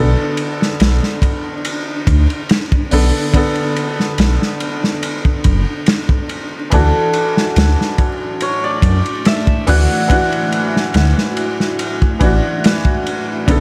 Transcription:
0.00 0.15 B1 medium
0.00 2.86 D3 medium
0.00 2.87 B3 medium
0.00 13.60 D4 medium
0.00 2.88 A4 medium
0.37 ride medium
0.62 snare soft
0.80 1.00 B1 medium
0.80 snare loud
0.80 ride medium
1.03 snare soft
1.22 kick medium
1.22 ride medium
1.65 ride medium
2.07 2.27 D2 medium
2.07 kick loud
2.07 ride medium
2.30 ride soft
2.49 snare loud
2.49 ride medium
2.72 kick medium
2.91 3.12 B1 medium
2.91 3.29 D3 medium
2.91 3.29 B3 medium
2.91 3.30 A4 loud
2.91 open hi-hat medium
3.32 5.40 D3 medium
3.32 5.41 B3 medium
3.32 kick loud
3.32 ride medium
3.37 5.42 A4 loud
3.56 ride soft
3.76 ride medium
4.00 snare soft
4.18 4.38 B1 medium
4.18 snare loud
4.18 ride medium
4.42 snare soft
4.60 ride medium
4.84 snare soft
5.03 ride medium
5.25 kick medium
5.44 5.65 F#1 loud
5.44 kick medium
5.44 ride medium
5.86 snare loud
5.86 ride medium
6.09 kick medium
6.29 ride medium
6.70 6.92 D2 medium
6.70 9.62 E3 medium
6.70 13.60 A3 medium
6.70 9.63 D4 medium
6.70 13.44 E4 medium
6.70 13.60 F#4 medium
6.70 9.66 A4 medium
6.70 10.07 D5 medium
6.70 kick loud
6.70 ride medium
6.75 9.64 F#4 medium
7.13 ride medium
7.37 snare medium
7.56 7.76 D2 medium
7.56 snare loud
7.56 ride medium
7.81 snare soft
7.98 kick medium
7.98 ride medium
8.40 8.70 C#5 medium
8.40 ride medium
8.64 11.10 D5 medium
8.82 9.02 F#2 medium
8.82 kick medium
8.82 ride medium
9.06 ride soft
9.25 11.56 E5 medium
9.25 snare loud
9.25 ride medium
9.47 kick loud
9.67 9.87 D2 medium
9.67 10.05 E3 loud
9.67 10.05 D4 medium
9.67 10.06 F#4 loud
9.67 11.83 F#5 loud
9.67 open hi-hat medium
10.08 12.15 E3 loud
10.08 12.16 D4 medium
10.08 13.45 E5 medium
10.08 kick loud
10.08 ride medium
10.13 12.18 F#4 loud
10.32 ride soft
10.52 ride medium
10.76 snare soft
10.94 11.14 D2 medium
10.94 snare loud
10.94 ride medium
11.18 snare soft
11.37 ride medium
11.60 snare soft
11.79 ride medium
12.02 kick medium
12.19 12.41 A1 medium
12.19 13.42 E3 medium
12.19 13.43 D4 medium
12.19 kick medium
12.19 ride medium
12.24 13.44 F#4 loud
12.64 snare loud
12.64 ride medium
12.85 kick medium
13.07 ride medium
13.46 13.60 B1 medium
13.46 13.60 D3 medium
13.46 13.60 B3 medium
13.46 13.60 D4 medium
13.46 kick loud
13.46 ride medium
13.51 13.60 A4 medium

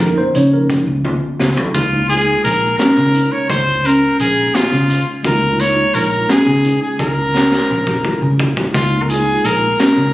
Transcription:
0.00 0.12 F2 medium
0.00 1.00 F3 medium
0.00 1.01 A#3 medium
0.00 0.25 D#4 medium
0.00 1.01 D#4 medium
0.00 0.18 A#4 medium
0.18 0.34 C5 medium
0.35 0.79 C#3 medium
0.35 0.95 C#4 medium
0.35 0.53 C#5 medium
0.35 closed hi-hat medium
0.53 0.69 A#4 medium
0.70 kick medium
0.70 closed hi-hat medium
0.87 1.17 C#2 medium
1.05 1.64 F4 medium
1.05 high tom medium
1.40 1.55 C#2 loud
1.40 snare medium
1.57 floor tom medium
1.73 2.34 C#2 medium
1.73 5.19 G#3 medium
1.73 5.20 A#3 medium
1.73 5.21 D#4 medium
1.73 2.07 F4 medium
1.73 2.04 F4 medium
1.73 5.21 F4 medium
1.73 kick medium
1.73 closed hi-hat medium
2.09 2.69 D#4 medium
2.09 2.42 G#4 medium
2.09 closed hi-hat soft
2.44 2.74 A#1 medium
2.44 2.77 A#4 medium
2.44 closed hi-hat medium
2.78 3.10 C#4 medium
2.78 3.33 A#4 medium
2.78 snare loud
2.78 closed hi-hat medium
2.98 3.27 C#3 medium
3.14 3.75 D#4 medium
3.14 closed hi-hat medium
3.32 3.49 C#5 medium
3.49 4.09 C#2 medium
3.49 3.87 C5 loud
3.49 kick medium
3.49 closed hi-hat medium
3.84 4.44 C#4 medium
3.84 4.20 A#4 medium
3.84 closed hi-hat medium
4.19 4.49 A#1 medium
4.19 4.57 G#4 medium
4.19 closed hi-hat medium
4.55 5.15 F4 medium
4.55 5.07 F4 medium
4.55 snare medium
4.55 closed hi-hat medium
4.72 5.02 C#3 medium
4.90 closed hi-hat medium
5.23 5.83 C#2 medium
5.23 8.69 G#3 medium
5.23 8.70 A#3 medium
5.23 8.70 D#4 medium
5.23 5.55 F4 medium
5.23 8.71 F4 medium
5.23 5.62 A#4 medium
5.23 kick medium
5.23 closed hi-hat medium
5.59 6.20 D#4 medium
5.59 5.96 C#5 loud
5.59 closed hi-hat medium
5.94 6.24 A#1 medium
5.94 6.30 A#4 medium
5.94 closed hi-hat medium
6.29 6.59 C#4 medium
6.29 6.79 G#4 medium
6.29 snare loud
6.29 closed hi-hat medium
6.46 6.76 C#3 medium
6.64 7.24 D#4 medium
6.64 closed hi-hat medium
6.82 6.98 G#4 medium
6.99 7.58 C#2 medium
6.99 8.35 A#4 medium
6.99 kick medium
6.99 closed hi-hat medium
7.34 7.94 C#4 medium
7.34 snare medium
7.52 snare medium
7.70 7.99 A#1 medium
7.87 kick medium
8.05 8.64 F4 medium
8.05 kick medium
8.22 8.51 C#3 medium
8.40 kick medium
8.57 kick medium
8.73 9.33 C#2 medium
8.73 10.13 G#3 medium
8.73 10.13 A#3 medium
8.73 10.13 D#4 medium
8.73 9.04 F4 medium
8.73 10.13 F4 medium
8.73 kick medium
8.73 closed hi-hat medium
9.02 9.11 A#4 soft
9.09 9.70 D#4 medium
9.09 9.47 G#4 medium
9.09 closed hi-hat medium
9.44 9.74 A#1 medium
9.44 9.80 A#4 medium
9.44 closed hi-hat medium
9.80 10.09 C#4 medium
9.80 10.13 A#4 medium
9.80 snare loud
9.80 closed hi-hat medium
9.97 10.13 C#3 medium

